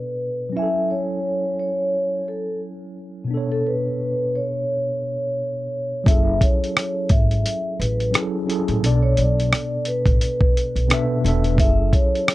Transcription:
Already playing: B2 B3 D4 A4 B4 D5
0.49 F#3 C#4
0.56 E4 E5 G#5
0.62 A4
0.90 C#5
1.59 C#5
2.28 A4
3.24 B2 B3
3.31 D4 A4
3.37 C#5
3.52 A4
3.67 B4
4.35 C#5
6.04 F#1 F#3 C#4 E4 E5, kick
6.08 G#4 A4, closed hi-hat
6.41 C#5, kick, closed hi-hat
6.64 closed hi-hat
6.77 cross-stick, closed hi-hat
7.09 G#1 E5, kick, closed hi-hat
7.31 closed hi-hat
7.46 closed hi-hat
7.80 A1 B4, closed hi-hat
8.00 closed hi-hat
8.11 F#3 C#4 E4, closed hi-hat
8.15 G#4 A4, cross-stick
8.45 F#3 C#4 E4
8.50 G#4 A4, closed hi-hat
8.68 A1, closed hi-hat
8.80 B1 B2 B3 D4
8.84 A4 D5, closed hi-hat
9.02 C#5
9.17 B1 D5, closed hi-hat
9.40 closed hi-hat
9.53 cross-stick, closed hi-hat
9.85 B4, closed hi-hat
10.06 A1, kick, closed hi-hat
10.21 closed hi-hat
10.41 kick
10.57 closed hi-hat
10.75 B1, closed hi-hat
10.87 B2 B3 D4, closed hi-hat
10.91 A4 E5, cross-stick
11.22 E1 B2 B3 D4
11.26 A4 E5, closed hi-hat
11.44 closed hi-hat
11.56 F#1 F#3 C#4 E4 E5, kick, closed hi-hat
11.61 G#4 A4
11.93 C#5, kick, closed hi-hat
12.15 closed hi-hat
12.28 cross-stick, closed hi-hat

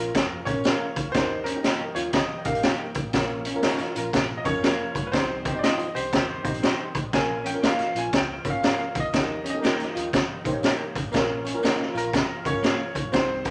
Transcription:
Already playing: A#1 F3 A#3 C#4 F4 A#4
0.15 F2, kick, snare, closed hi-hat, tambourine
0.45 A#2 A#3 C#4 F4 A#4 C#5, kick, closed hi-hat, tambourine
0.64 A#3 C#4 F4 A#4, snare, closed hi-hat, tambourine
0.96 C3, kick, closed hi-hat, tambourine
1.04 D2
1.12 D#2 G3 A#3 D#4 A#4 C5, kick, snare, closed hi-hat, tambourine
1.16 G4
1.44 C#4 A#4, closed hi-hat, tambourine
1.56 A#3 D#4 G4 A#4
1.63 A#3 D#4 G4 A#4, snare, closed hi-hat, tambourine
1.80 muted fingered electric bass stroke
1.95 D#2 F4 C#5, closed hi-hat, tambourine
2.13 D#3 D#5, kick, snare, closed hi-hat, tambourine
2.45 A#1 A#3 D#4 G4 A#4 F5, kick, closed hi-hat, tambourine
2.55 closed hi-hat
2.63 A#3 D#4 G4 A#4 G5, snare, closed hi-hat, tambourine
2.94 C2, kick, closed hi-hat, tambourine
3.05 A1
3.13 A#1 F3 A#3 C#4 F4 A#4, kick, snare, closed hi-hat, tambourine
3.45 C#4, closed hi-hat, tambourine
3.55 A#3 C#4 F4 A#4
3.63 A#3 C#4 D#4 F4 A#4, snare, closed hi-hat, tambourine
3.78 muted fingered electric bass stroke, snare, closed hi-hat
3.95 A#1 F4 A#4, closed hi-hat, tambourine
4.13 A#2, kick, snare, closed hi-hat, tambourine
4.37 D#5
4.44 F2 A#3 C#4 F4 A#4 C#5, kick, closed hi-hat, tambourine
4.63 A#3 C#4 F4 A#4, snare, closed hi-hat, tambourine
4.95 G2, kick, closed hi-hat, tambourine
5.07 B4
5.12 C2 D#3 G3 C4 D#4 G4 C5, kick, snare, closed hi-hat, tambourine
5.45 D#3 C4 D#4 G4, kick, closed hi-hat, tambourine
5.53 C4 D#4 G4 D#5
5.59 D5
5.63 C4 D#4 F4 G4 C5 D#5, snare, closed hi-hat, tambourine
5.79 muted fingered electric bass stroke, closed hi-hat
5.95 C2 G4 C5, closed hi-hat, tambourine
6.12 D#2 D#3 C4 G4, kick, snare, closed hi-hat, tambourine
6.44 A#1 C4 D#4 G4 C5, kick, closed hi-hat, tambourine
6.54 closed hi-hat
6.63 C4 D#4 G4 C5, snare, closed hi-hat, tambourine
6.95 C2, kick, closed hi-hat, tambourine
7.03 A1
7.13 A#1 F3 A#3 C#4 F4 A#4 G#5, kick, snare, closed hi-hat, tambourine
7.44 C#4 G5, closed hi-hat, tambourine
7.53 A#3 C#4 F4 A#4
7.63 A#3 C#4 D#4 F4 A#4 F5, snare, closed hi-hat, tambourine
7.79 muted fingered electric bass stroke, snare, closed hi-hat
7.95 A#1 F4 G#5, closed hi-hat, tambourine
8.13 C#2, kick, snare, closed hi-hat, tambourine
8.18 G5
8.44 G#1 A#3 C#4 F4 C#5, kick, closed hi-hat, tambourine
8.50 F5
8.63 A#3 C#4 F4 A#4, snare, closed hi-hat, tambourine
8.95 A#1, kick, closed hi-hat, tambourine
9.00 D2 D#5
9.13 D#2 G3 A#3 D#4 G4 A#4, kick, snare, closed hi-hat, tambourine
9.44 C#4, closed hi-hat, tambourine
9.50 A#3 D#4 G4 D#5
9.54 A4
9.61 A#3 D#4 G4 A#4, snare, tambourine
9.65 A#4, closed hi-hat
9.80 muted fingered electric bass stroke, snare, closed hi-hat
9.94 D#2 F4, closed hi-hat, tambourine
10.13 D#3, kick, snare, closed hi-hat, tambourine
10.44 A#1 A#3 D#4 G4 C5, kick, closed hi-hat, tambourine
10.52 C#5
10.63 A#3 D#4 G4 A#4, snare, closed hi-hat, tambourine
10.95 C2, kick, closed hi-hat, tambourine
11.04 A1
11.12 A#1 F3 A#3 C#4 F4 A#4, kick, snare, closed hi-hat, tambourine
11.45 C#4, closed hi-hat, tambourine
11.54 A#3 C#4 F4 A#4
11.63 A#3 C#4 D#4 F4 A#4, snare, closed hi-hat, tambourine
11.79 muted fingered electric bass stroke, snare
11.94 A#1 F4 A#4, closed hi-hat, tambourine
12.13 kick, snare, closed hi-hat, tambourine
12.44 C#2 A#3 C#4 F4 A#4 C#5, kick, closed hi-hat, tambourine
12.53 G#1
12.62 A#3 C#4 F4 A#4, snare, closed hi-hat, tambourine
12.95 A#1, kick, closed hi-hat, tambourine
13.03 B1
13.12 C2 D#3 G3 C4 D#4 G4 C5, kick, snare, closed hi-hat, tambourine
13.45 D#3 C4 D#4 G4, kick, closed hi-hat, tambourine

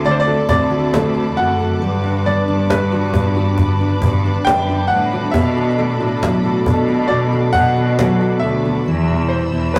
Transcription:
Already playing: D2 D3 A3 C4 F#4 A4 A5 D6
0.05 D3 A3 D5 B5, cajon slap
0.11 C5
0.20 D5
0.27 F#4 A4, cajon slap
0.49 D2 C4 D5, cajon bass
0.71 F#4
0.93 A3 A4, cajon slap
1.15 F#4 A4
1.37 F#2 C4 F#4 F#5, cajon slap
1.59 A4
1.81 G2 G3 G4 B4 B5, cajon slap
2.04 D4
2.26 G3 B3 D5, cajon slap
2.48 G2 D4, cajon slap
2.70 G3 B3 B4, cajon slap
2.92 D4 F#4
3.14 B3 D4, cajon bass
3.36 D4 F#4, cajon slap
3.58 D3, cajon bass, cajon slap
3.80 D4, cajon slap
4.02 G2 B3, cajon bass
4.24 D4
4.45 F#2 G5, cajon slap
4.68 D4 F#4
4.88 A2 G3 D4 F#5, cajon slap
5.12 D4 F#4
5.31 B2 B3 A4 E5, cajon bass
5.56 D4 F#4
5.78 A3 A4, cajon slap
6.00 A2 D4 F#4, cajon slap
6.22 F#3 B3, cajon slap
6.44 F#4
6.66 B2 D4 A4, cajon bass
6.88 B3 F#4, cajon slap
7.08 B2 F#4 D5, cajon slap
7.32 D4 A4, cajon slap
7.53 B2 A3 F#5, cajon bass
7.76 D4 A4
7.98 F#3 B3, cajon slap
8.21 F#4
8.40 D2 D4 A4 E5, cajon slap
8.64 B3 F#4
8.86 E2 E3 G3 B5 E6, cajon slap
9.09 B2 E4
9.29 G4 C5, cajon slap
9.52 E2 B3 E4, cajon slap
9.74 E3 G3 B4, cajon slap

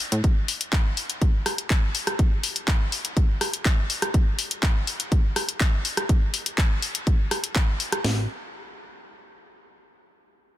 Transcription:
0.12 A2, closed hi-hat
0.24 kick, closed hi-hat
0.48 open hi-hat
0.61 closed hi-hat
0.73 kick, clap, closed hi-hat
0.97 open hi-hat
1.10 closed hi-hat
1.22 kick, closed hi-hat
1.46 cross-stick, open hi-hat
1.58 closed hi-hat
1.70 kick, clap, closed hi-hat
1.95 open hi-hat
2.07 cross-stick, closed hi-hat
2.19 kick, closed hi-hat
2.43 open hi-hat
2.56 closed hi-hat
2.68 kick, clap, closed hi-hat
2.92 open hi-hat
3.05 closed hi-hat
3.17 kick, closed hi-hat
3.41 cross-stick, open hi-hat
3.54 closed hi-hat
3.65 kick, clap, closed hi-hat
3.90 open hi-hat
4.02 cross-stick, closed hi-hat
4.14 kick, closed hi-hat
4.39 open hi-hat
4.51 closed hi-hat
4.63 kick, clap, closed hi-hat
4.87 open hi-hat
5.00 closed hi-hat
5.12 kick, closed hi-hat
5.36 cross-stick, open hi-hat
5.49 closed hi-hat
5.61 kick, clap, closed hi-hat
5.85 open hi-hat
5.97 cross-stick, closed hi-hat
6.09 kick, closed hi-hat
6.34 open hi-hat
6.46 closed hi-hat
6.58 kick, clap, closed hi-hat
6.82 open hi-hat
6.95 closed hi-hat
7.07 kick, closed hi-hat
7.31 cross-stick, open hi-hat
7.44 closed hi-hat
7.56 kick, clap, closed hi-hat
7.80 open hi-hat
7.92 cross-stick, closed hi-hat
8.04 A1, snare, open hi-hat

